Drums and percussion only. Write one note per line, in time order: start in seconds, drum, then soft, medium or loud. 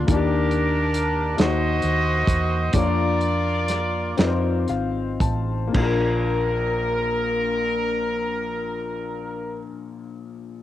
0.08 kick medium
0.08 closed hi-hat medium
0.51 closed hi-hat soft
0.94 closed hi-hat medium
1.38 snare medium
1.38 closed hi-hat medium
1.82 closed hi-hat soft
2.27 kick medium
2.27 closed hi-hat medium
2.73 kick medium
2.73 closed hi-hat medium
3.21 closed hi-hat soft
3.68 snare soft
3.68 closed hi-hat medium
4.18 snare medium
4.18 closed hi-hat medium
4.68 closed hi-hat soft
5.20 kick medium
5.20 closed hi-hat medium
5.74 kick medium
5.74 crash medium